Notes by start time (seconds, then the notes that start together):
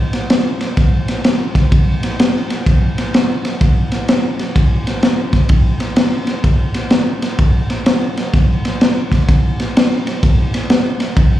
0.13 snare, ride
0.30 snare, ride
0.61 snare, ride
0.77 kick, snare, ride
1.08 snare, ride
1.24 snare, ride
1.55 kick, snare, ride
1.72 kick, ride
2.03 snare, ride
2.19 snare, ride
2.50 snare, ride
2.66 kick, snare, ride
2.98 snare, ride
3.14 snare, ride
3.45 snare, ride
3.61 kick, snare, ride
3.92 snare, ride
4.08 snare, ride
4.39 snare, ride
4.56 kick, snare, ride
4.87 snare, ride
5.03 snare, ride
5.33 kick, snare, ride
5.49 kick, ride
5.80 snare, ride
5.96 snare, ride
6.27 snare, ride
6.44 kick, snare, ride
6.74 snare, ride
6.90 snare, ride
7.22 snare, ride
7.39 kick, ride
7.70 snare, ride
7.86 snare, ride
8.17 snare, ride
8.33 kick, snare, ride
8.65 snare, ride
8.81 snare, ride
9.12 kick, snare, ride
9.29 kick, snare, ride
9.60 snare, ride
9.77 snare, ride
10.07 snare, ride
10.23 kick, snare, ride
10.54 snare, ride
10.70 snare, ride
11.00 snare, ride
11.17 kick, ride